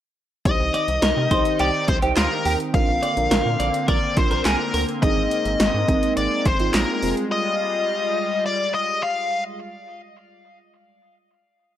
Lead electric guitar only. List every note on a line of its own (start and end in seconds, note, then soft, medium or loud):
0.46 1.60 D#5 loud
1.60 1.87 D5 loud
1.89 1.97 C5 medium
2.17 2.57 A#4 medium
2.74 3.88 F5 loud
3.88 4.18 D5 loud
4.17 4.45 C5 medium
4.46 4.85 A#4 medium
5.03 6.13 D#5 loud
6.17 6.46 D5 medium
6.46 6.74 C5 medium
6.74 7.14 A#4 medium
7.32 8.45 D#5 loud
8.46 8.72 D5 medium
8.74 9.01 D#5 medium
9.03 9.43 F5 medium